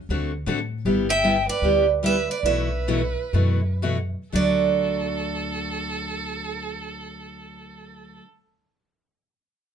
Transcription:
0.09 upright bass D2, steel-string acoustic guitar D3 A3 C4 F#4 A4
0.46 upright bass A2, steel-string acoustic guitar D3 A3 C4 F#4 A4
0.85 upright bass G1, steel-string acoustic guitar G3 B3 E4 G4
1.09 violin E5, steel-string acoustic guitar G5
1.24 steel-string acoustic guitar G3 B3 E4 G4
1.48 violin B4, steel-string acoustic guitar D5
1.62 upright bass D2, steel-string acoustic guitar G3 B3 E4 G4
2.03 steel-string acoustic guitar G3 B3 E4 G4 E5, violin B4
2.30 violin B4, steel-string acoustic guitar D5
2.43 upright bass B1, steel-string acoustic guitar B2 E3 A3 E4 F#4 E5, violin B4
2.88 steel-string acoustic guitar B2 E3 A3 E4 F#4
3.33 upright bass F#2, steel-string acoustic guitar B2 E3 A3 E4 F#4
3.82 steel-string acoustic guitar B2 E3 A3 E4 F#4
4.32 upright bass D2, steel-string acoustic guitar D3 F#3 A3 F#4 D5, violin A4

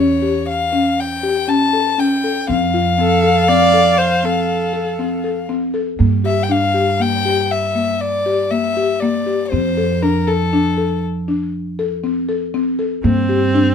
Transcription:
Already playing: upright bass E2, marimba C#4, violin C#5
0.22 marimba G4
0.49 violin F5
0.72 marimba C#4
1.00 violin G5
1.23 marimba G4
1.48 marimba C#4, violin A5
1.73 marimba A4
1.98 marimba C#4, violin G5
2.24 marimba A4
2.48 upright bass F2, marimba C4, violin F5
2.74 marimba F4
2.98 marimba C4, viola A4
3.24 marimba A4
3.48 marimba C4, viola D5
3.74 marimba A4
3.98 viola C5
4.24 marimba C4, viola A4
4.73 marimba A4
4.99 marimba C4
5.24 marimba A4
5.49 marimba C4
5.74 marimba A4
5.99 upright bass G2, marimba A#3
6.24 marimba G4, violin E5
6.43 violin G5
6.49 marimba D4, violin F5
6.74 marimba G4
7.00 marimba A#3, violin G5
7.25 marimba G4
7.51 violin E5
7.75 marimba A#3
8.01 violin D5
8.26 marimba G4
8.51 marimba A#3, violin E5
8.77 marimba G4
9.00 marimba A#3, violin D5
9.26 marimba G4
9.50 upright bass F2, marimba C4, violin C5
9.77 marimba A4
10.02 marimba D4, violin A#4
10.27 violin A4, marimba A4
10.53 marimba D4
10.78 marimba A4
11.28 marimba D4
11.79 marimba A4
12.04 marimba C4
12.29 marimba A4
12.54 marimba C4
12.79 marimba A4
13.04 upright bass G2, marimba A#3, viola C4
13.29 marimba G4
13.54 marimba D4

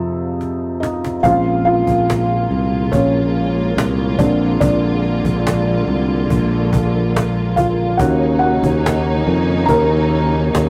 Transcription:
Already playing: felt piano F2 C3 F3 C4 D#4 G#4 A4
0.41 cajon slap
0.80 felt piano D#4 D#5, cajon slap
1.04 cajon slap
1.23 fretless electric bass A#1, string section A#2 F3 G#3 A#3 F4, felt piano C#3 G#3 C4 F4 F5, cajon bass
1.65 felt piano F4 F5
1.86 fretless electric bass A#1, cajon bass
2.10 cajon slap
2.51 fretless electric bass C2
2.92 fretless electric bass A#1, felt piano C#4 C#5, cajon bass
3.77 fretless electric bass C2, cajon slap
4.19 fretless electric bass A#1, felt piano D3 G#3 C4 D4 D5, string section D3, cajon bass
4.60 fretless electric bass A#1, felt piano D4 D5, cajon bass
5.24 fretless electric bass A#1, cajon bass
5.47 cajon slap
5.88 fretless electric bass C2
6.30 fretless electric bass A#1, cajon bass
6.73 cajon bass
7.16 cajon slap
7.56 felt piano F4 F5, cajon bass
7.97 fretless electric bass D#2, string section C#3 D#3 A#3 C#4 D#4, felt piano D#3 A#3 C#4 F#4 F#5, cajon bass
8.39 felt piano F#4 F#5
8.63 fretless electric bass D#2, cajon bass
8.86 cajon slap
9.27 fretless electric bass F2
9.66 fretless electric bass D#2, felt piano A#4 A#5, cajon bass
10.54 fretless electric bass D#2, cajon slap

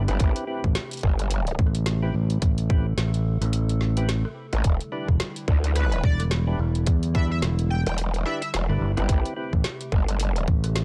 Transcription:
Already playing: ambient pad E3 D4 G4
0.08 wobble bass G1, tonewheel organ C4 E4 G4 B4, cross-stick, closed hi-hat
0.20 wobble bass A1, ambient pad C3 A3, kick, closed hi-hat
0.36 closed hi-hat
0.47 tonewheel organ C4 E4 G4 B4
0.64 fingered electric bass A1, kick
0.75 snare, closed hi-hat
0.91 closed hi-hat
0.93 closed hi-hat
0.97 closed hi-hat
0.99 closed hi-hat
1.01 wobble bass G1, kick, closed hi-hat
1.19 cross-stick, closed hi-hat
1.31 closed hi-hat
1.47 closed hi-hat
1.59 fingered electric bass A1, kick
1.67 cross-stick
1.75 closed hi-hat
1.86 snare, closed hi-hat
2.02 tonewheel organ C4 E4 G4 B4
2.14 fingered electric bass A1
2.30 closed hi-hat
2.42 fingered electric bass A1, ambient pad A4, kick, closed hi-hat
2.58 closed hi-hat
2.70 tonewheel organ C4 E4 G4 B4, kick
2.97 fingered electric bass A1, snare, closed hi-hat
3.14 closed hi-hat
3.41 fingered electric bass A1, cross-stick, closed hi-hat
3.53 closed hi-hat
3.69 closed hi-hat
3.81 snare
3.97 tonewheel organ C4 E4 G4 B4, closed hi-hat
4.09 snare, closed hi-hat
4.25 cross-stick
4.53 wobble bass A1, cross-stick, closed hi-hat
4.64 wobble bass E1, ambient pad D3 G3 E4, kick, closed hi-hat
4.81 closed hi-hat
4.92 tonewheel organ D4 E4 G4 B4
5.08 fingered electric bass E1, kick
5.20 snare, closed hi-hat
5.36 closed hi-hat
5.48 wobble bass D2, kick
5.64 cross-stick, closed hi-hat
5.76 analog synth lead B4, closed hi-hat
5.92 closed hi-hat
6.03 fingered electric bass E1, analog synth lead D5, kick
6.20 cross-stick, closed hi-hat
6.31 snare, closed hi-hat
6.47 tonewheel organ D4 E4 G4 B4
6.59 fingered electric bass E1
6.75 closed hi-hat
6.87 fingered electric bass E2, kick, closed hi-hat
7.03 closed hi-hat
7.14 tonewheel organ D4 E4 G4 B4, analog synth lead E5, kick
7.31 analog synth lead E5
7.42 fingered electric bass E1, snare, closed hi-hat
7.59 closed hi-hat
7.70 analog synth lead G5
7.87 wobble bass E1, analog synth lead G5, cross-stick, closed hi-hat
7.98 closed hi-hat
8.14 closed hi-hat
8.25 tonewheel organ D4 E4 G4 B4, analog synth lead E5, snare
8.42 analog synth lead E5, closed hi-hat
8.54 wobble bass E1, snare, closed hi-hat
8.69 fingered electric bass G1, tonewheel organ D4 E4 G4 B4, cross-stick
8.81 fingered electric bass G1
8.97 wobble bass G1, tonewheel organ C4 E4 G4 B4, cross-stick, closed hi-hat
9.08 wobble bass A1, ambient pad C3 A3 G4, kick, closed hi-hat
9.26 closed hi-hat
9.36 tonewheel organ C4 E4 G4 B4
9.53 fingered electric bass A1, kick
9.64 snare, closed hi-hat
9.81 closed hi-hat
9.92 wobble bass G1, kick
10.08 cross-stick, closed hi-hat
10.20 closed hi-hat
10.36 closed hi-hat
10.48 fingered electric bass A1, kick
10.64 cross-stick, closed hi-hat
10.76 snare, closed hi-hat

